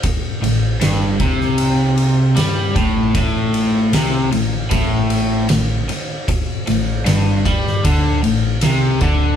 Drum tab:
RD |x-x-x-x-x-x-x-x-|x-x-x-x-x-x-x-x-|x-x-x-x-x-x-x-x-|
SD |--o-o--o----o---|----o-------o---|--o-o--o----o---|
BD |o-----o-------o-|o-------o-------|o-----o-o-----o-|